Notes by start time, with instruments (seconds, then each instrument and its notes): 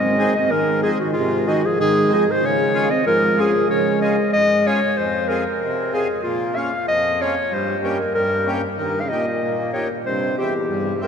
Already playing: accordion G#2, euphonium C4, clarinet D#5
0.19 accordion C4 D#4 G#4
0.35 euphonium C4, clarinet D#5
0.50 accordion G#2, euphonium D#3, clarinet A#4
0.83 euphonium F3, accordion C4 D#4 G#4, clarinet G#4
1.00 euphonium D#3, clarinet F#4
1.13 accordion G#2, clarinet F4
1.18 euphonium C3
1.46 euphonium D#3, accordion C4 D#4 G#4, clarinet F#4
1.65 euphonium F3, clarinet G#4
1.76 accordion G#2
1.80 euphonium D#3, clarinet G#4
2.09 accordion C4 D#4 G#4
2.14 euphonium F3, clarinet G#4
2.29 euphonium G#3, clarinet C5
2.41 accordion C#3, euphonium G#3
2.46 clarinet C#5
2.74 accordion C#4 F4 G#4
2.90 euphonium C4, clarinet D#5
3.05 accordion G#2, euphonium F3, clarinet A#4
3.38 euphonium F3, accordion C#4 F4 G#4, clarinet G#4
3.69 accordion C#3, euphonium G#3, clarinet C#5
4.01 accordion C#4 F4 G#4, clarinet D#5
4.32 accordion G#2, clarinet D#5
4.66 accordion C#4 F4 G#4, clarinet C#5
4.97 accordion F2, clarinet C5
5.29 accordion C4 F4 G#4, clarinet A#4
5.60 accordion C3
5.93 accordion C4 F4 G#4, clarinet G#4
6.23 accordion A#2, clarinet F4
6.56 accordion A#3 C#4 F4, clarinet F5
6.87 accordion F2, clarinet D#5
7.20 accordion A#3 C#4 F4, clarinet C#5
7.51 accordion G2, clarinet C5
7.79 accordion A#3, clarinet C5
7.84 accordion C#4 G4, clarinet A#4
8.14 accordion G2, clarinet A#4
8.46 accordion A#3 C#4 G4
8.77 euphonium G2, accordion D#3, clarinet A#4
9.01 euphonium C#3, clarinet F5
9.09 euphonium A#2, accordion A#3 D#4 G4, clarinet D#5
9.41 accordion A#2
9.73 euphonium A#2, accordion A#3 D#4 G4, clarinet C#5
10.06 euphonium G2, accordion C3, clarinet C5
10.38 euphonium E2, accordion C4 E4 G4, clarinet G4
10.68 accordion G2
11.01 euphonium G2, accordion C4 E4 G4, clarinet A#4